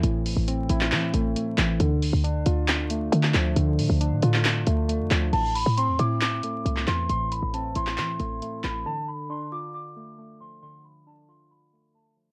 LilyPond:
<<
  \new Staff \with { instrumentName = "Celesta" } { \time 4/4 \key a \minor \tempo 4 = 136 r1 | r1 | r1 | a''8 b''8 c'''8 d'''8 d'''4. c'''8 |
c'''8 b''8 a''8 c'''8 c'''4. b''8 | a''8 b''8 c'''8 d'''8 d'''4. c'''8 | c'''8 r8 a''8 c'''8 b''4 a''8 r8 | }
  \new Staff \with { instrumentName = "Synth keys" } { \time 4/4 \key a \minor <a, e a>4 c'8 e'4 a8 a8 e8 | d4 d'8 f'4 a8 a8 f8 | d4 d'8 f'4 a8 a8 f8 | a,4 c'8 e'4 a8 a8 e8 |
a,4 c'8 e'4 a8 a8 e8 | d4 d'8 f'4 a8 a8 f8 | d4 d'8 f'4 a8 a8 f8 | }
  \new Staff \with { instrumentName = "808-style bass" } { \clef bass \time 4/4 \key a \minor a,,8. a,,8. a,,8 e8 a,,8 r8 a,,8 | d,8. d,8. d,4. d8 d,8 | d,8 a,16 d,8 a,16 a,4 d,8. f,16 d,8 | a,,8. a,8 e,16 a,4 r8 c,8 e,8 |
a,,8. a,,8. a,,8 e8 a,,8 r8 a,,8 | r1 | r1 | }
  \new DrumStaff \with { instrumentName = "Drums" } \drummode { \time 4/4 hh8 hho8 hh8 hh16 hc16 <hc hh>8 hh8 hh8 <hc hh>8 | hh8 hho8 hh8 hh8 <hc hh>8 hh8 hh16 hc16 <hc hh>8 | hh8 hho8 hh8 hh16 hc16 <hc hh>8 hh8 hh8 <hc hh>8 | <cymc hh>8 hho8 hh8 hh8 <hc hh>8 hh8 hh16 hc16 <hc hh>8 |
hh8 hh8 hh8 hh16 hc16 <hc hh>8 hh8 hh8 <hc hh>8 | r4 r4 r4 r4 | r4 r4 r4 r4 | }
>>